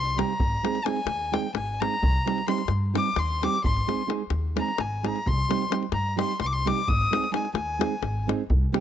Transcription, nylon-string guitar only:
0.17 G3 C4 D#4 G4
0.63 G#3 C4 D#4 G#4
0.85 G#3 C4 D#4 G#4
1.32 G#3 C4 D#4 G#4
1.81 G#3 C4 D#4 G#4
2.26 G3 C4 D#4 G4
2.47 G3 C4 D#4 G4
2.94 G3 C4 D#4 G4
3.42 G3 C4 D#4 G4
3.87 G#3 C4 D#4 G#4
4.07 G#3 C4 D#4 G#4
4.56 G#3 C4 D#4 G#4
5.03 G#3 C4 D#4 G#4
5.49 G3 C4 D#4 G4
5.70 G3 C4 D#4 G4
6.16 G3 C4 D#4 G4
6.65 G3 C4 D#4 G4
7.11 G#3 C4 D#4 G#4
7.31 G#3 C4 D#4 G#4
7.79 G#3 C4 D#4 G#4
8.27 G#3 C4 D#4 G#4
8.72 G3 C4 D#4 G4

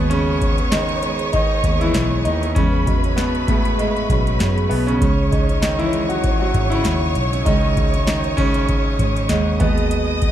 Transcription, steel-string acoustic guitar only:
Already playing: D#3 G#3 B3 G#4 B4
0.59 B3 G#4 B4
1.03 G#3 B3 G#4 B4
1.64 G#3 B3 G#4 B4
1.95 G#3 B3 G#4 B4
2.43 B3 G#4 B4
2.56 E3 G#3 B3 G#4 C#5
3.04 B3 G#4 C#5
3.48 G#3 B3 G#4 C#5
4.09 G#3 B3 G#4 C#5
4.40 G#3 B3 G#4 C#5
4.88 B3 G#4 C#5
5.01 C#3 G#3 C#4 D#4 C#5
5.49 C#4 D#4 C#5
5.93 G#3 C#4 D#4 C#5
6.54 G#3 C#4 D#4 C#5
6.85 G#3 C#4 D#4 C#5
7.32 C#4 D#4 C#5
7.46 C#3 G#3 C#4 D#4 C#5
7.94 C#4 D#4 C#5
8.38 G#3 C#4 D#4 C#5
8.99 G#3 C#4 D#4 C#5
9.30 G#3 C#4 D#4 C#5
9.60 D#3 G#3 B3 G#4 B4

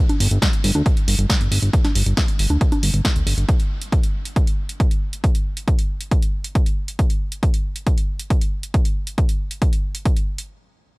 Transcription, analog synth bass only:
0.20 G1
0.31 G1
0.64 G1
0.75 D2
1.08 G1
1.19 G1
1.41 G1
1.51 G1
1.63 G1
1.95 G1
2.06 G1
2.39 G1
2.50 D2
2.83 G1
2.94 G1
3.16 D2
3.27 G1
3.38 G1

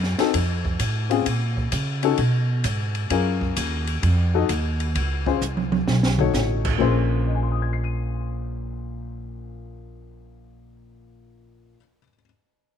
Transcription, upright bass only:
Already playing: F#2
0.18 muted upright bass stroke
0.34 F2
0.79 A2
1.26 A#2
1.72 C#3
2.18 B2
2.64 G#2
3.10 F#2
3.56 D#2
4.03 F2
4.49 D#2
4.95 C#2
5.41 C2
5.87 B1
6.33 A1
6.80 A#1

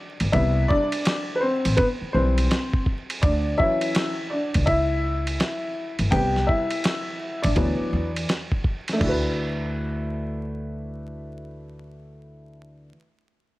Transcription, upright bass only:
0.21 G1
0.34 C2
1.65 A1
2.02 muted upright bass stroke
2.15 B1
3.23 D2
4.55 C#2
5.99 G1
6.12 C2
7.45 A1
7.57 D2
7.80 muted upright bass stroke
7.93 E2
9.01 D2

